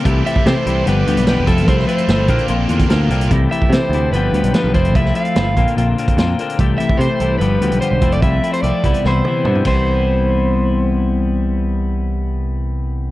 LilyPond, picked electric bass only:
\new Staff \with { instrumentName = "Picked electric bass" } { \clef bass \time 4/4 \key c \major \tempo 4 = 146 c,8 r8 c16 r16 c,8 g,,8 d,16 b,,8 g,,16 f,,8 | c,8 r8 g,,8 bes,,16 r16 bes,,8 e,8 d,8 c,8 | c,8 r8 c16 r16 d,8 g,,8 d,16 b,,16 r16 b,,16 f,,8 | c,8 r8 g,,8 bes,,16 r16 bes,,8 r8 f,8 r8 |
c,8 r8 c16 r16 c,8 g,,8 d,16 b,,16 r16 b,,16 f,,8 | c,8 r8 c,16 r16 c,16 r16 c,8 r8 g,8 c,8~ | c,1~ | c,1 | }